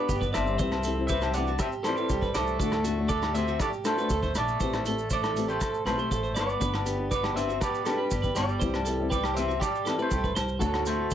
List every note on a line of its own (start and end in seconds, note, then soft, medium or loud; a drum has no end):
0.00 0.33 B3 medium
0.00 0.13 D4 soft
0.00 0.11 G4 medium
0.00 0.31 B4 medium
0.00 0.33 D5 medium
0.09 0.33 G1 medium
0.09 0.21 G4 medium
0.09 kick medium
0.09 maracas medium
0.21 0.32 B4 medium
0.21 kick soft
0.21 maracas soft
0.33 0.59 G1 medium
0.33 1.06 C4 medium
0.33 1.05 C5 medium
0.33 0.57 D5 medium
0.33 1.06 E5 medium
0.33 cross-stick medium
0.33 closed hi-hat soft
0.33 low agogo medium
0.33 maracas medium
0.47 maracas soft
0.58 1.56 C2 loud
0.58 0.75 E3 medium
0.58 0.75 C4 medium
0.58 0.76 E4 medium
0.58 0.82 C5 medium
0.58 kick medium
0.58 maracas medium
0.63 0.76 G4 medium
0.72 cross-stick medium
0.72 low agogo medium
0.72 maracas soft
0.83 0.97 C4 medium
0.83 0.97 E4 medium
0.83 1.08 A4 medium
0.83 closed hi-hat medium
0.83 maracas medium
0.88 0.96 G4 medium
0.97 1.14 C4 soft
0.97 1.13 E4 soft
0.97 1.12 G4 soft
1.07 1.21 B4 medium
1.07 1.32 C5 medium
1.07 1.31 E5 medium
1.07 kick medium
1.07 maracas medium
1.13 1.34 C4 medium
1.21 1.46 G4 medium
1.21 cross-stick medium
1.21 low agogo medium
1.21 maracas soft
1.34 1.50 E3 medium
1.34 1.51 C4 medium
1.34 1.57 D5 medium
1.34 1.59 F#5 medium
1.34 closed hi-hat soft
1.34 maracas medium
1.38 1.60 D4 medium
1.38 1.51 E4 medium
1.38 1.52 G4 medium
1.47 1.58 F#4 medium
1.47 maracas soft
1.59 1.83 G4 medium
1.59 1.68 C5 medium
1.59 1.67 E5 loud
1.59 kick medium
1.59 cross-stick medium
1.59 low agogo medium
1.59 maracas medium
1.64 1.74 C4 medium
1.72 maracas soft
1.83 1.98 E3 soft
1.83 1.98 C4 soft
1.83 1.98 E4 medium
1.83 2.30 A4 medium
1.83 1.96 A4 medium
1.83 2.31 C5 medium
1.83 cross-stick medium
1.83 closed hi-hat soft
1.83 low agogo medium
1.83 maracas medium
1.88 2.33 G3 medium
1.88 1.97 G4 medium
1.97 2.14 C4 soft
1.97 2.13 E4 soft
1.97 2.13 G4 medium
1.97 2.09 B4 medium
1.97 maracas soft
2.09 2.33 C2 medium
2.09 2.22 G4 medium
2.09 kick medium
2.09 maracas medium
2.22 2.34 B4 medium
2.22 kick medium
2.22 maracas soft
2.34 2.59 C2 medium
2.34 3.07 A3 medium
2.34 3.06 A4 medium
2.34 2.59 C5 medium
2.34 3.06 D5 medium
2.34 cross-stick medium
2.34 closed hi-hat soft
2.34 low agogo medium
2.34 maracas medium
2.47 maracas soft
2.59 3.56 D2 medium
2.59 2.75 A3 medium
2.59 2.75 D4 medium
2.59 2.76 F#4 medium
2.59 2.83 A4 medium
2.59 kick medium
2.59 maracas medium
2.72 cross-stick medium
2.72 low agogo medium
2.72 maracas soft
2.84 2.97 A3 medium
2.84 2.98 D4 soft
2.84 3.08 F#4 medium
2.84 2.96 F#4 medium
2.84 closed hi-hat soft
2.84 maracas medium
2.97 3.14 D4 soft
2.97 3.12 F#4 medium
3.08 3.34 A3 medium
3.08 3.21 A4 medium
3.08 3.33 A4 medium
3.08 3.34 D5 medium
3.08 kick medium
3.08 maracas medium
3.22 3.46 G4 medium
3.22 cross-stick medium
3.22 low agogo medium
3.22 maracas soft
3.34 3.49 A3 medium
3.34 3.59 C4 medium
3.34 3.51 F#4 medium
3.34 3.58 C5 medium
3.34 3.60 E5 medium
3.34 muted nylon-string guitar stroke medium
3.34 closed hi-hat soft
3.34 maracas medium
3.48 3.60 F#4 medium
3.48 maracas soft
3.60 3.72 A3 medium
3.60 3.85 G4 medium
3.60 3.68 A4 medium
3.60 3.68 D5 medium
3.60 kick medium
3.60 cross-stick medium
3.60 low agogo medium
3.60 maracas medium
3.73 maracas soft
3.84 3.97 A3 medium
3.84 4.32 A3 medium
3.84 3.98 D4 medium
3.84 3.96 F#4 medium
3.84 4.32 A4 medium
3.84 3.97 A4 medium
3.84 4.37 C5 medium
3.84 cross-stick medium
3.84 closed hi-hat soft
3.84 low agogo medium
3.84 maracas medium
3.97 4.14 D4 soft
3.97 4.12 F#4 medium
3.97 4.10 B4 medium
3.97 maracas soft
4.09 4.34 D2 medium
4.09 4.22 A4 medium
4.09 kick medium
4.09 maracas medium
4.23 4.35 C5 medium
4.23 kick medium
4.23 maracas soft
4.34 4.58 A#1 medium
4.34 5.06 A3 medium
4.34 5.08 A4 medium
4.34 4.60 D5 medium
4.34 5.08 D5 medium
4.34 cross-stick medium
4.34 closed hi-hat soft
4.34 low agogo medium
4.34 maracas medium
4.48 maracas soft
4.60 5.56 A1 medium
4.60 4.76 E3 medium
4.60 4.76 C4 medium
4.60 4.77 G4 medium
4.60 4.84 C5 medium
4.60 muted nylon-string guitar stroke medium
4.60 kick medium
4.60 maracas medium
4.73 cross-stick medium
4.73 low agogo medium
4.73 maracas soft
4.85 4.98 E3 soft
4.85 4.99 A3 medium
4.85 4.99 C4 medium
4.85 4.99 G4 medium
4.85 5.10 A4 medium
4.85 closed hi-hat medium
4.85 maracas medium
4.98 muted nylon-string guitar stroke soft
4.98 maracas soft
5.10 5.46 A3 medium
5.10 5.47 A4 medium
5.10 5.23 C5 medium
5.10 5.49 D5 medium
5.10 kick medium
5.10 maracas medium
5.23 5.47 A4 medium
5.23 cross-stick medium
5.23 low agogo medium
5.23 maracas soft
5.35 5.50 E3 soft
5.35 5.51 A3 medium
5.35 5.51 C4 medium
5.35 5.52 G4 medium
5.35 closed hi-hat soft
5.35 maracas medium
5.48 5.83 A3 medium
5.48 5.60 G4 medium
5.48 5.83 A4 medium
5.48 5.84 C5 medium
5.48 maracas soft
5.61 5.84 A4 medium
5.61 kick medium
5.61 cross-stick medium
5.61 low agogo medium
5.61 maracas loud
5.74 maracas soft
5.85 6.08 B1 medium
5.85 5.98 E3 soft
5.85 5.99 A3 medium
5.85 6.34 A3 medium
5.85 5.98 C4 soft
5.85 5.96 G4 medium
5.85 6.33 A4 medium
5.85 5.98 B4 medium
5.85 6.38 C5 medium
5.85 cross-stick medium
5.85 closed hi-hat soft
5.85 low agogo medium
5.97 6.14 A3 soft
5.97 6.13 C4 soft
5.97 6.13 G4 soft
5.97 6.10 C5 medium
5.97 maracas soft
6.11 6.34 A1 medium
6.11 6.23 A4 medium
6.11 kick medium
6.11 maracas medium
6.23 6.34 C5 medium
6.23 maracas soft
6.35 6.59 G1 medium
6.35 7.08 B3 medium
6.35 6.59 D5 medium
6.35 cross-stick medium
6.35 closed hi-hat soft
6.35 low agogo medium
6.35 maracas medium
6.39 7.08 B4 medium
6.39 7.10 D5 medium
6.49 maracas soft
6.60 7.57 G1 medium
6.60 6.75 B3 medium
6.60 6.76 D4 medium
6.60 6.84 B4 medium
6.60 muted nylon-string guitar stroke medium
6.60 kick medium
6.60 maracas medium
6.74 cross-stick medium
6.74 low agogo medium
6.74 maracas soft
6.86 6.98 D4 soft
6.86 7.10 G4 medium
6.86 6.96 G4 medium
6.86 closed hi-hat soft
6.86 maracas medium
6.97 7.14 D4 soft
6.97 7.13 G4 soft
7.11 7.36 B3 medium
7.11 7.23 B4 medium
7.11 7.34 B4 medium
7.11 7.36 D5 medium
7.11 kick medium
7.11 maracas medium
7.23 7.47 G4 medium
7.23 cross-stick medium
7.23 low agogo medium
7.23 maracas soft
7.34 7.50 B3 medium
7.34 7.60 C4 medium
7.34 7.51 D4 medium
7.34 7.52 G4 medium
7.34 7.58 C5 medium
7.34 7.62 E5 medium
7.34 closed hi-hat soft
7.34 maracas medium
7.49 7.60 F#4 medium
7.49 maracas soft
7.61 7.86 B3 medium
7.61 7.85 G4 medium
7.61 7.84 B4 medium
7.61 7.85 D5 medium
7.61 kick medium
7.61 cross-stick medium
7.61 low agogo medium
7.61 maracas loud
7.74 maracas soft
7.85 8.34 G3 medium
7.85 7.98 B3 medium
7.85 7.99 D4 medium
7.85 8.33 G4 medium
7.85 7.97 G4 medium
7.85 7.97 A4 medium
7.85 8.39 B4 medium
7.85 cross-stick medium
7.85 closed hi-hat soft
7.85 low agogo medium
7.85 maracas medium
7.98 8.15 D4 soft
7.98 8.13 G4 medium
7.98 8.10 B4 medium
8.11 8.35 G1 medium
8.11 8.23 G4 medium
8.11 kick medium
8.11 maracas medium
8.22 8.35 B4 medium
8.22 kick soft
8.22 maracas soft
8.35 8.60 G1 medium
8.35 9.07 G4 medium
8.35 8.59 D5 medium
8.35 9.11 D5 medium
8.35 cross-stick medium
8.35 closed hi-hat soft
8.35 low agogo medium
8.35 maracas medium
8.41 9.10 G3 medium
8.49 maracas soft
8.59 9.57 C2 medium
8.59 8.77 E3 medium
8.59 8.77 C4 medium
8.59 8.77 E4 medium
8.59 8.84 C5 medium
8.59 kick medium
8.59 maracas medium
8.64 8.78 G4 medium
8.74 cross-stick medium
8.74 low agogo medium
8.74 maracas soft
8.85 8.99 E3 soft
8.85 8.99 C4 medium
8.85 9.00 E4 medium
8.85 9.09 A4 medium
8.85 closed hi-hat medium
8.85 maracas medium
8.89 8.98 G4 medium
8.99 9.16 C4 soft
8.99 9.15 E4 medium
8.99 9.14 G4 soft
9.10 9.34 G4 medium
9.10 9.23 B4 medium
9.10 9.36 D5 medium
9.10 kick medium
9.10 maracas medium
9.15 9.36 G3 medium
9.23 9.47 G4 medium
9.23 cross-stick medium
9.23 low agogo medium
9.23 maracas soft
9.34 9.51 E3 medium
9.34 9.52 C4 medium
9.34 9.58 C5 medium
9.34 9.62 E5 medium
9.34 closed hi-hat soft
9.34 maracas medium
9.38 9.62 C4 medium
9.38 9.52 E4 medium
9.38 9.53 G4 medium
9.48 9.60 F#4 medium
9.48 maracas soft
9.60 9.95 G4 medium
9.60 9.84 G4 medium
9.60 9.97 D5 medium
9.60 kick medium
9.60 cross-stick medium
9.60 low agogo medium
9.60 maracas loud
9.66 9.99 G3 medium
9.75 maracas soft
9.85 9.99 E3 medium
9.85 10.00 C4 medium
9.85 9.99 E4 medium
9.85 9.98 A4 medium
9.85 cross-stick medium
9.85 closed hi-hat soft
9.85 low agogo medium
9.85 maracas medium
9.98 10.15 C4 soft
9.98 10.14 E4 soft
9.98 10.14 G4 medium
9.98 10.34 A4 soft
9.98 10.11 B4 medium
9.98 maracas soft
10.02 10.36 A3 medium
10.02 10.36 C5 medium
10.11 10.35 C2 medium
10.11 10.23 G4 medium
10.11 kick medium
10.11 maracas medium
10.24 10.35 B4 medium
10.24 kick soft
10.24 maracas soft
10.35 10.60 C2 medium
10.35 10.60 C5 medium
10.35 cross-stick medium
10.35 closed hi-hat soft
10.35 low agogo medium
10.35 maracas medium
10.48 maracas soft
10.59 11.14 D2 loud
10.59 10.85 F#3 medium
10.59 10.76 A3 medium
10.59 10.77 D4 medium
10.59 10.84 F#4 medium
10.59 10.77 F#4 medium
10.59 10.85 A4 medium
10.59 kick medium
10.59 maracas medium
10.74 cross-stick medium
10.74 low agogo medium
10.74 maracas soft
10.85 10.98 A3 medium
10.85 11.14 A3 medium
10.85 10.99 D4 medium
10.85 11.10 F#4 medium
10.85 10.96 F#4 medium
10.85 11.14 A4 medium
10.85 11.14 C5 medium
10.85 closed hi-hat soft
10.85 maracas medium
10.98 11.13 F#4 soft
10.98 muted nylon-string guitar stroke soft
11.11 maracas medium